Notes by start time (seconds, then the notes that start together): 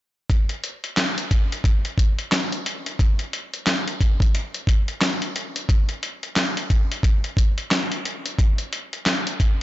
0.30 kick, closed hi-hat
0.49 closed hi-hat
0.64 closed hi-hat
0.84 closed hi-hat
0.97 snare, clap, closed hi-hat
1.18 closed hi-hat
1.31 kick, closed hi-hat
1.52 closed hi-hat
1.64 kick, closed hi-hat
1.85 closed hi-hat
1.98 kick, closed hi-hat
2.19 closed hi-hat
2.32 snare, clap, closed hi-hat
2.52 closed hi-hat
2.66 closed hi-hat
2.86 closed hi-hat
2.99 kick, closed hi-hat
3.19 closed hi-hat
3.33 closed hi-hat
3.54 closed hi-hat
3.66 snare, clap, closed hi-hat
3.88 closed hi-hat
4.01 kick, closed hi-hat
4.20 kick, closed hi-hat
4.35 closed hi-hat
4.54 closed hi-hat
4.67 kick, closed hi-hat
4.88 closed hi-hat
5.01 snare, clap, closed hi-hat
5.22 closed hi-hat
5.36 closed hi-hat
5.56 closed hi-hat
5.69 kick, closed hi-hat
5.89 closed hi-hat
6.03 closed hi-hat
6.23 closed hi-hat
6.36 snare, clap, closed hi-hat
6.57 closed hi-hat
6.70 kick, closed hi-hat
6.92 closed hi-hat
7.03 kick, closed hi-hat
7.24 closed hi-hat
7.37 kick, closed hi-hat
7.58 closed hi-hat
7.71 snare, clap, closed hi-hat
7.92 closed hi-hat
8.05 closed hi-hat
8.26 closed hi-hat
8.39 kick, closed hi-hat
8.58 closed hi-hat
8.73 closed hi-hat
8.93 closed hi-hat
9.06 snare, clap, closed hi-hat
9.27 closed hi-hat
9.40 kick, closed hi-hat